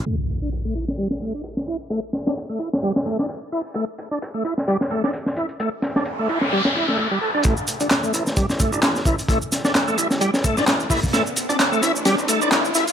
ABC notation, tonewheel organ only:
X:1
M:4/4
L:1/16
Q:"Swing 16ths" 1/4=130
K:Cmix
V:1 name="Tonewheel organ"
A, z2 D z A, E z G, z A, D z2 E z | A, z2 D z A, E z G, z A, D z2 E z | A, z2 D z A, E z G, z A, D z2 E z | A, z2 D z A, E z G, z E A, A, G, A D |
A, z2 D z A, E z G, z A, D z2 E z | A, z2 D z A, E z G, z A, D z2 E z | A, z2 D z A, E z G, z A, D z2 E z |]